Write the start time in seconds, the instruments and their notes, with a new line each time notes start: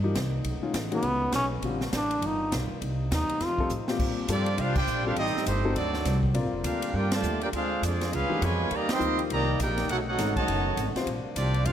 Already playing: upright bass G2, trombone section A#3 C4 D4 D#4
0.04 grand piano F3 A#3 D#4 G4
0.15 upright bass C2, kick, snare, hi-hat pedal, ride
0.44 upright bass B1, trombone section C#3 A3 B3, kick, ride
0.61 grand piano D#3 G#3 C#4 F4, muted upright bass stroke
0.73 upright bass A1, kick, snare, hi-hat pedal, ride
0.91 grand piano D#3 G#3 C#4 F#4, trombone B3, ride
1.02 upright bass C#2, kick, ride
1.32 upright bass B1, trombone C#4, kick, snare, hi-hat pedal, ride
1.62 upright bass A#1, trombone section C3 G3 A#3 D4, grand piano D3 G3 C4 F4, kick, ride
1.81 snare
1.92 upright bass A1, trombone D4, kick, snare, hi-hat pedal, ride
2.11 ride
2.22 upright bass G1, trombone section D#3 B3 F4, kick, ride
2.26 trombone D#4
2.52 upright bass B1, kick, snare, hi-hat pedal, ride
2.71 muted upright bass stroke
2.81 upright bass C2, trombone section C3 A#3 D#4, kick, ride
3.11 upright bass D#2, trombone D#4, kick, snare, hi-hat pedal, ride
3.29 ride
3.40 upright bass F2, trombone section C3 F3 A3 D#4, kick, snare, ride
3.45 trombone F4
3.58 grand piano G3 C4 F4 A4, kick
3.69 upright bass A2, hi-hat pedal
3.88 grand piano A#2 G3 C4 F4 G4, snare
3.99 upright bass A#2, trombone section C3 G3 A#3 D4, kick, crash
4.18 muted upright bass stroke
4.28 upright bass G2, trombone section F3 G3 D4, grand piano G3 C4 F4 A4, kick, hi-hat pedal, ride
4.33 trumpet section C4 F4 G4 D5
4.46 ride
4.58 upright bass C2, trombone section G3 D4 F4, trumpet section D4 G4 C5 F5, kick, ride
4.75 trombone section G3 D4 G4, trumpet section F4 C5 D5 G5, kick, crash
4.87 upright bass A#1, hi-hat pedal
5.06 grand piano G3 C4 F4 A4, trombone section G3 D4 F4, trumpet section D4 G4 C5 F5
5.16 upright bass A1, trombone section D#3 G3 A3 C4 D#4, trumpet section C4 G4 A4 D#5, kick, ride
5.26 snare
5.35 muted upright bass stroke, snare
5.46 upright bass G1, trombone section D#3 G3 C4, trumpet section A3 D#4 G4 C5, kick, hi-hat pedal, ride
5.65 grand piano C4 D#4 F#4 A4
5.75 upright bass D2, trombone section D3 F#3 A3 C4 D4, trumpet section C4 F#4 A4 D5, kick, ride
5.94 snare
6.05 upright bass C2, kick, snare, hi-hat pedal, ride
6.23 kick
6.33 upright bass A#1, trombone section D3 G3 A#3 F4, grand piano C4 F4 A#4 D5, kick, ride
6.44 upright bass G1
6.53 upright bass F1
6.64 upright bass D2, trombone section A#3 D4 F4, trumpet section D4 G4 A#4 F5, kick, hi-hat pedal, ride
6.82 ride
6.94 upright bass G2, trombone section A#3 D4 G4, trumpet section F4 A#4 D5 G5, kick
7.12 trombone section D3 F3 A3, trumpet section G4 D5 F5 A5, snare, ride
7.23 upright bass D#2, hi-hat pedal
7.41 trombone section A#3 D4 G4, trumpet section F4 A#4 D5 G5, ride
7.53 upright bass D2, trombone section G#3 C4 F4, trumpet section D4 G#4 C5 F5, kick, ride
7.82 upright bass F2, trombone section F3 G#3 D4, trumpet section C4 F4 G#4 D5, kick, hi-hat pedal, ride
8.01 snare, ride
8.12 upright bass C#2, trombone section C#3 G3 G#3 B3 F4, trumpet section C#4 G#4 B4 F5, kick, ride
8.29 grand piano F3 A#3 D#4 G4
8.42 upright bass F2, trombone section B2 F3 G#3, trumpet section F4 B4 C#5 G#5, kick, hi-hat pedal, ride
8.69 upright bass D#2, trombone section D#3 A#3 C4 D#4, kick, ride
8.73 trombone section D#3 G3 A#3, trumpet section G4 D5 D#5 A#5
8.89 trombone section D#3 G3 C4, trumpet section A#4 D#5, snare, ride
8.93 trumpet section G5 C6
8.99 upright bass D2, grand piano F3 A#3 D#4 G4, hi-hat pedal
9.19 ride
9.30 upright bass C2, trombone section D#3 G3 A#3, trumpet section G4 D5 D#5 A#5, kick, ride
9.59 upright bass A#1, trombone section A#3 D#4 G4, trumpet section D#4 A#4 D5 G5, kick, hi-hat pedal, ride
9.78 snare, ride
9.89 upright bass B1, trombone section C#3 A3 B3 D#4 F#4, trumpet section D#4 A4 C#5 F#5, kick, ride
10.08 trombone section A3 D#4 F#4, trumpet section D#4 A4 C#5 F#5
10.18 upright bass G#1, grand piano D#3 G#3 C#4 F#4, kick, snare, hi-hat pedal, ride
10.36 trombone section D#3 F#3 A3, trumpet section F#4 C#5 D#5 A5, kick, ride
10.47 upright bass F#1, kick, ride
10.77 upright bass G#1, kick, hi-hat pedal, ride
10.95 grand piano G3 C4 F4 C5, muted upright bass stroke, snare, ride
11.06 upright bass A#1, trombone section C3 G3 A#3 D4, kick, ride
11.24 muted upright bass stroke
11.36 upright bass C2, trombone section F3 G3 D4, trumpet section C4 F4 G4 D5, kick, hi-hat pedal, ride
11.54 ride
11.64 upright bass F2, trombone section G3 D4 F4, trumpet section D4 G4 C5 F5, kick, ride